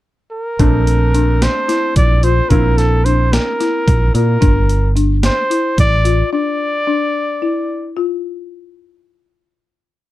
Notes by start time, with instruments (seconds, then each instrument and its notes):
0.31 trumpet A#4
0.59 fingered electric bass A#1, grand piano A3 C4 D4, marimba D4, kick, closed hi-hat
0.87 closed hi-hat
1.14 marimba D4, closed hi-hat
1.42 trumpet C5, snare, closed hi-hat
1.68 marimba E4, snare, closed hi-hat
1.96 fingered electric bass A#1, trumpet D5, kick, closed hi-hat
2.23 marimba F4, trumpet C5, closed hi-hat
2.49 fingered electric bass A#1, grand piano A#3 C4 E4, marimba D4, trumpet A#4, kick, closed hi-hat
2.77 trumpet A4, snare, closed hi-hat
3.05 marimba D4, trumpet C5, closed hi-hat
3.33 trumpet A#4, snare, closed hi-hat
3.60 marimba E4, snare, closed hi-hat
3.88 fingered electric bass A#1, kick, closed hi-hat
4.14 fingered electric bass A#2, marimba F4, trumpet A#4, closed hi-hat
4.41 fingered electric bass G1, marimba D4, kick, closed hi-hat
4.69 closed hi-hat
4.96 marimba D4, closed hi-hat
5.23 trumpet C5, snare, closed hi-hat
5.50 marimba E4, closed hi-hat
5.78 fingered electric bass A1, trumpet D5, kick, closed hi-hat
6.05 marimba F4, closed hi-hat
6.33 marimba D4, trumpet D5
6.87 marimba D4
7.42 marimba E4
7.97 marimba F4